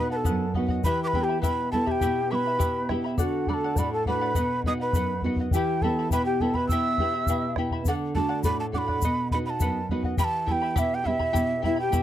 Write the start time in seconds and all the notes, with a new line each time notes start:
Already playing: B2 B3 D#4 B4 B5
0.00 F#4
0.10 B4 D#5 F#5 A5
0.16 A4
0.24 B4 D#5 F#5, bombo low, shaker
0.28 F#2
0.54 B3 D#4 F#4 B4 D#5 F#5, bombo low
0.68 D#5 F#5, bombo low
0.84 E3 E4 G4 B4 E5 G5 B5, bombo low, shaker
1.03 B4 D6
1.07 B5
1.13 B3 E4 G4 E5 G5 B5, bombo low
1.22 G4 G5
1.29 E4 E5 B5
1.40 E4 G4 B4 E5 G5 B5, bombo low, shaker
1.46 B2
1.72 B3 E4 G4 A4 E5 G5 A5 B5, bombo low
1.86 E4 G4 E5 A5 B5, bombo low
1.91 G5
2.01 E4 G4 E5 G5 B5, bombo low, shaker
2.05 B2
2.31 B3 E4 G4 B4 E5 G5 B5 D6
2.35 B5
2.46 E4 E5 B5
2.59 B2 E4 G4 E5 G5 B5, bombo low, shaker
2.89 B3 E4 G4 E5 G5 B5, bombo rim, bombo low
3.04 E4 E5 B5
3.18 D3 F#4 A4 D5 F#5, bombo low, shaker
3.47 A3 D4 F#4 A4 D5 F#5 B5, bombo low
3.54 A5
3.64 D5 F#5
3.76 A2 A4 D5 F#5 B5, bombo low, shaker
3.92 A4 A5
4.06 A3 D4 F#4 A4 B4 D5 F#5 B5, bombo low
4.21 D5 F#5
4.35 B2 B4 D#5 F#5, bombo low, shaker
4.64 B3 D#4 F#4 B4 D#5 F#5 D#6, bombo low
4.80 B4 D#5 F#5 B5
4.93 F#2 B4 D#5 F#5, bombo low, shaker
5.22 B3 D#4 F#4 B4 D#5, bombo low
5.26 F#5
5.36 F#5, bombo low
5.41 D#5
5.51 E3 G4 G5, bombo low, shaker
5.55 E4 E5 B5
5.81 B3 E4 G4 A4 E5 G5 A5 B5, bombo low
5.99 E4 E5 B5
6.11 B2 E4 G4 B4 E5 G5 B5, bombo low, shaker
6.26 G4 G5
6.40 B3 E4 G4 A4 E5 G5 A5 B5, bombo low
6.54 E4 B4 E5 B5, bombo low
6.68 B2 E4 G4 E5 G5 B5 E6, bombo low, shaker
6.98 B3 E4 G4 E5 G5 B5, bombo low
7.14 E4 E5 B5
7.26 B2 E4 G4 E5 G5 B5, bombo low, shaker
7.56 B3 E4 G4 E5 G5 B5, bombo rim, bombo low
7.71 E4 E5 B5, bombo low
7.85 D3 A4 D5 F#5, bombo low, shaker
8.15 A3 D4 F#4 A4 D5 F#5 A5, bombo low
8.29 D5 F#5
8.44 A2 A4 D5 F#5 B5, bombo low, shaker
8.60 A5
8.72 A3 D4 F#4 A4 D5 F#5 D6, bombo low
8.78 B5
8.88 D5 F#5, bombo low
9.02 B2 B4 D#5 F#5, bombo low, shaker
9.31 B3 D#4 F#4 B4 D#5 F#5 B5, bombo low
9.46 D#5 F#5 A5 B5
9.60 F#2 B4 D#5 F#5, bombo low, shaker
9.89 B3 D#4 F#4 B4 D#5 F#5, bombo low
10.03 D#5 F#5, bombo low
10.17 E3 E4 G4 E5 G5 B5, bombo low, shaker
10.24 A5
10.46 B3 E4 G4 E5 G5 A5 B5, bombo low
10.52 G5
10.62 E4 E5 B5
10.76 B2 E4 G4 E5 G5 B5, bombo low, shaker
10.95 G5
11.04 B3 E4 E5 G5 B5, bombo low
11.08 E4 G4
11.19 E4 E5 B5, bombo low
11.33 B2 E4 G4 E5 G5 B5, bombo low, shaker
11.62 B3 E4 G4 E5 G5 B5, bombo low
11.76 E4 E5 G5 B5
11.81 G4
11.92 B2 E4 G4 E5 G5 B5, bombo low, shaker